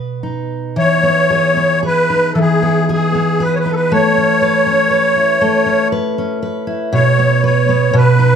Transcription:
Already playing: steel-string acoustic guitar B2 B3 F#4 B4
0.23 steel-string acoustic guitar D#4
0.76 steel-string acoustic guitar E3, accordion C#5
1.03 steel-string acoustic guitar B3
1.30 steel-string acoustic guitar G#4
1.57 steel-string acoustic guitar B3
1.83 steel-string acoustic guitar G#4, accordion B4
2.10 steel-string acoustic guitar D#4
2.33 steel-string acoustic guitar E3, accordion A4
2.41 accordion G#4
2.62 steel-string acoustic guitar B3
2.89 steel-string acoustic guitar G#4, accordion G#4
3.15 steel-string acoustic guitar B3
3.40 steel-string acoustic guitar G#4, accordion B4
3.55 accordion C#5
3.59 accordion B4
3.65 steel-string acoustic guitar D#4
3.71 accordion A4
3.75 accordion B4
3.92 steel-string acoustic guitar A3, accordion C#5
4.17 steel-string acoustic guitar C#4
4.42 steel-string acoustic guitar B4
4.66 steel-string acoustic guitar C#4
4.90 steel-string acoustic guitar B4
5.16 steel-string acoustic guitar E4
5.41 steel-string acoustic guitar A3
5.66 steel-string acoustic guitar C#4
5.92 steel-string acoustic guitar B4
6.18 steel-string acoustic guitar C#4
6.42 steel-string acoustic guitar B4
6.67 steel-string acoustic guitar E4
6.93 steel-string acoustic guitar B2, accordion C#5
7.19 steel-string acoustic guitar B3
7.44 steel-string acoustic guitar B4, accordion C#5
7.69 steel-string acoustic guitar B3
7.93 steel-string acoustic guitar B2, accordion B4
8.19 steel-string acoustic guitar D#4

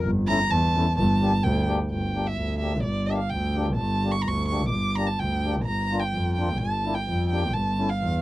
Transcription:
Already playing: accordion A#4
0.04 double bass G1
0.28 accordion A3 C#4 E4, violin A#5
0.50 double bass E2, violin A5
0.75 accordion A3 C#4 E4
0.97 double bass G1, violin A5
1.21 accordion A#3 D4 G4
1.44 double bass D2, violin G5
1.67 accordion A#3 D4 G4
1.91 double bass G1, violin G5
2.15 accordion A#3 D4 G4
2.27 violin E5
2.37 double bass D2
2.59 accordion A#3 D4 G4, violin E5
2.83 double bass G1, violin D5
3.06 accordion A#3 D4 G4, violin E5
3.18 violin F5
3.30 double bass D2, violin G5
3.56 accordion A#3 D4 G4
3.76 double bass G1, violin A5
4.03 accordion A#3 D4 G4
4.12 violin C#6
4.22 double bass D2, violin A#5
4.28 violin C#6
4.48 accordion A#3 D4 G4, violin C#6
4.69 double bass G1, violin D6
4.96 accordion A#3 D4 G4, violin A#5
5.07 violin A5
5.19 double bass D2, violin G5
5.45 accordion A#3 D4 G4
5.65 double bass G1, violin A#5
5.91 accordion A#3 D4 F4
6.00 violin G5
6.14 double bass F2
6.36 accordion A#3 D4 F4, violin G5
6.58 double bass G1, violin A5
6.85 accordion A#3 D4 E4
6.94 violin G5
7.08 double bass F2
7.30 accordion A#3 D4 G4, violin G5
7.53 double bass G1, violin A5
7.77 accordion A3 C#4 E4
7.89 violin F5
8.01 double bass E2

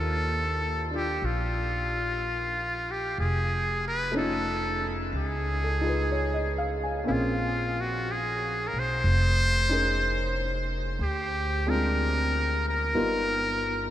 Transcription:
Already playing: upright bass D#2, grand piano A#3 D4 D#4 F4 G4 C5, muted trumpet A4
0.91 grand piano D4 F4
0.95 muted trumpet G4
1.22 upright bass A#1, muted trumpet F4
2.91 muted trumpet G4
3.18 upright bass F1, muted trumpet G#4
3.88 muted trumpet B4
4.12 grand piano A3 C#4
4.16 grand piano D#4 F4, muted trumpet A4
5.13 upright bass C#2, muted trumpet G#4
5.64 grand piano A4
5.81 grand piano D#4 F4 G#4
5.87 grand piano B4
6.12 grand piano C#5
6.34 grand piano D#5
6.58 grand piano F5
6.83 grand piano G#5
7.04 grand piano A#3 C4 C#4, muted trumpet E4
7.08 upright bass A#1, grand piano G#4 F5
7.12 muted trumpet F4
7.81 muted trumpet F#4
8.11 muted trumpet G#4
8.67 muted trumpet A#4
8.73 upright bass B1
8.79 muted trumpet C5
9.04 upright bass F1
9.69 grand piano C#4 D#4 G#4 A#4
10.99 upright bass D2, muted trumpet G4
11.66 grand piano G#3 C4 D4 F4 G#4, muted trumpet A#4
12.69 muted trumpet A#4
12.94 upright bass G1, grand piano G3 B3 D#4 F4 A#4

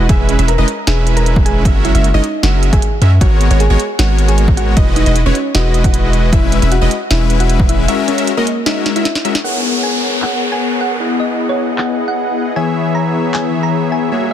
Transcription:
0.09 808-style bass E1, analog polysynth G#3 C#4 E4 B4 E5, synth pluck G#4 E5 G#5, kick, closed hi-hat
0.29 closed hi-hat
0.39 808-style bass E1, analog polysynth G#3 C#4 E4 B4 E5, synth pluck E5, closed hi-hat
0.48 synth pluck A#4 A#5, closed hi-hat
0.58 808-style bass E1, analog polysynth G#3 C#4 E4 B4 D#5, synth pluck D#5
0.68 closed hi-hat
0.87 808-style bass E1, analog polysynth G#3 C#4 E4 B4 E5, synth pluck G#4 E5 G#5, snare, closed hi-hat
1.07 closed hi-hat
1.17 synth pluck A#4 A#5, closed hi-hat
1.26 closed hi-hat
1.36 kick
1.46 synth pluck G#4 G#5, closed hi-hat
1.65 808-style bass F#1, analog polysynth G#3 C#4 F#4 A#4 E5, synth pluck E5, kick, closed hi-hat
1.85 synth pluck E4 E5, closed hi-hat
1.95 808-style bass F#1, analog polysynth G#3 C#4 F#4 A#4 E5, synth pluck E5, closed hi-hat
2.04 closed hi-hat
2.14 808-style bass F#1, analog polysynth G#3 C#4 F#4 A#4 D#5, synth pluck D#4 D#5
2.24 closed hi-hat
2.43 808-style bass F#1, analog polysynth G#3 C#4 F#4 A#4 E5, synth pluck F#4 E5 F#5, snare, closed hi-hat
2.63 closed hi-hat
2.73 808-style bass F#1, analog polysynth G#3 C#4 F#4 A#4 E5, synth pluck G#4 E5 G#5, kick, closed hi-hat
2.82 closed hi-hat
3.02 808-style bass F#2, analog polysynth G#3 C#4 F#4 A#4 E5, synth pluck E5, closed hi-hat
3.21 808-style bass G#1, analog polysynth G#3 B3 F#4 A#4 C#5, synth pluck F#4 C#5 F#5, kick, closed hi-hat
3.41 closed hi-hat
3.51 808-style bass G#1, analog polysynth G#3 B3 F#4 A#4 C#5, synth pluck C#5, closed hi-hat
3.60 synth pluck G#4 G#5, closed hi-hat
3.70 808-style bass G#1, analog polysynth G#3 B3 F#4 A#4 C#5, synth pluck C#5
3.80 closed hi-hat
3.99 808-style bass G#1, analog polysynth G#3 B3 F#4 A#4 C#5, synth pluck F#4 C#5 F#5, snare, closed hi-hat
4.18 closed hi-hat
4.28 synth pluck G#4 G#5, closed hi-hat
4.38 closed hi-hat
4.48 kick
4.57 synth pluck F#4 F#5, closed hi-hat
4.77 808-style bass E1, analog polysynth G#3 E4 F#4 B4 D#5, synth pluck D#5, kick, closed hi-hat
4.96 synth pluck D#4 D#5, closed hi-hat
5.06 808-style bass E1, analog polysynth G#3 E4 F#4 B4 D#5, synth pluck D#5, closed hi-hat
5.16 closed hi-hat
5.26 808-style bass E1, analog polysynth G#3 E4 F#4 B4 C#5, synth pluck C#4 C#5
5.35 closed hi-hat
5.55 808-style bass E1, analog polysynth G#3 E4 F#4 B4 D#5, synth pluck F#4 D#5 F#5, snare, closed hi-hat
5.74 closed hi-hat
5.84 synth pluck F#4 F#5, kick, closed hi-hat
5.94 closed hi-hat
6.13 closed hi-hat
6.32 808-style bass E1, analog polysynth G#3 C#4 E4 B4 E5, synth pluck E4 E5, kick, closed hi-hat
6.52 closed hi-hat
6.62 808-style bass E1, analog polysynth G#3 C#4 E4 B4 E5, synth pluck E5, closed hi-hat
6.72 synth pluck F#4 F#5, closed hi-hat
6.81 808-style bass E1, analog polysynth G#3 C#4 E4 B4 D#5, synth pluck D#5
6.91 closed hi-hat
7.10 808-style bass E1, analog polysynth G#3 C#4 E4 B4 E5, synth pluck E4 E5, snare, closed hi-hat
7.30 closed hi-hat
7.40 synth pluck F#4 F#5, closed hi-hat
7.50 closed hi-hat
7.60 kick
7.69 synth pluck E4 E5, closed hi-hat
7.88 analog polysynth G#3 C#4 F#4 A#4 E5, synth pluck E5, closed hi-hat
8.08 synth pluck C#4 C#5, closed hi-hat
8.18 analog polysynth G#3 C#4 F#4 A#4 E5, synth pluck E5, closed hi-hat
8.27 closed hi-hat
8.37 analog polysynth G#3 C#4 F#4 A#4 D#5, synth pluck A#3 A#4 D#5
8.47 closed hi-hat
8.66 analog polysynth G#3 C#4 F#4 A#4 E5, synth pluck D#4 D#5 E5, snare, closed hi-hat
8.86 snare, closed hi-hat
8.96 analog polysynth G#3 C#4 F#4 A#4 E5, synth pluck E4 E5, closed hi-hat
9.05 snare, closed hi-hat
9.15 snare
9.25 analog polysynth G#3 C#4 F#4 A#4 E5, synth pluck E5, closed hi-hat
9.35 snare
9.44 analog polysynth B3 G#4 A#4 C#5 F#5, synth pluck F#5, downlifter
9.83 synth pluck G#5
10.22 synth pluck F#5, clap
10.52 synth pluck G#5
10.81 synth pluck F#5
11.00 analog polysynth B3 E4 G#4 D#5 F#5
11.20 synth pluck D#5
11.49 synth pluck C#5
11.78 synth pluck F#5, clap
12.08 synth pluck F#5
12.56 analog polysynth E3 B3 E4 G#4 C#5 E5, synth pluck G#5, riser
12.95 synth pluck A#5
13.34 synth pluck G#5, clap
13.63 synth pluck A#5
13.92 synth pluck G#5
14.12 analog polysynth A#3 F#4 G#4 C#5 E5

